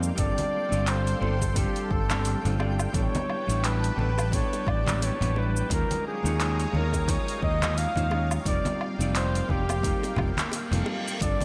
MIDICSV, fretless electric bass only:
0, 0, Header, 1, 2, 480
1, 0, Start_track
1, 0, Tempo, 689655
1, 128, Time_signature, 4, 2, 24, 8
1, 7967, End_track
2, 0, Start_track
2, 0, Title_t, "Fretless electric bass"
2, 0, Program_c, 0, 35
2, 124, Note_on_c, 0, 31, 95
2, 214, Note_off_c, 0, 31, 0
2, 501, Note_on_c, 0, 31, 100
2, 787, Note_off_c, 0, 31, 0
2, 844, Note_on_c, 0, 31, 98
2, 1145, Note_off_c, 0, 31, 0
2, 1327, Note_on_c, 0, 31, 91
2, 1626, Note_off_c, 0, 31, 0
2, 1703, Note_on_c, 0, 31, 91
2, 1988, Note_off_c, 0, 31, 0
2, 2044, Note_on_c, 0, 33, 94
2, 2134, Note_off_c, 0, 33, 0
2, 2424, Note_on_c, 0, 33, 103
2, 2709, Note_off_c, 0, 33, 0
2, 2765, Note_on_c, 0, 33, 97
2, 3066, Note_off_c, 0, 33, 0
2, 3248, Note_on_c, 0, 33, 88
2, 3547, Note_off_c, 0, 33, 0
2, 3623, Note_on_c, 0, 33, 87
2, 3908, Note_off_c, 0, 33, 0
2, 3967, Note_on_c, 0, 39, 96
2, 4056, Note_off_c, 0, 39, 0
2, 4344, Note_on_c, 0, 39, 104
2, 4628, Note_off_c, 0, 39, 0
2, 4685, Note_on_c, 0, 39, 98
2, 4985, Note_off_c, 0, 39, 0
2, 5167, Note_on_c, 0, 39, 94
2, 5466, Note_off_c, 0, 39, 0
2, 5540, Note_on_c, 0, 39, 91
2, 5826, Note_off_c, 0, 39, 0
2, 5884, Note_on_c, 0, 29, 95
2, 5974, Note_off_c, 0, 29, 0
2, 6257, Note_on_c, 0, 29, 96
2, 6545, Note_off_c, 0, 29, 0
2, 6604, Note_on_c, 0, 29, 104
2, 6905, Note_off_c, 0, 29, 0
2, 7085, Note_on_c, 0, 29, 100
2, 7175, Note_off_c, 0, 29, 0
2, 7455, Note_on_c, 0, 29, 88
2, 7526, Note_off_c, 0, 29, 0
2, 7805, Note_on_c, 0, 31, 93
2, 7895, Note_off_c, 0, 31, 0
2, 7967, End_track
0, 0, End_of_file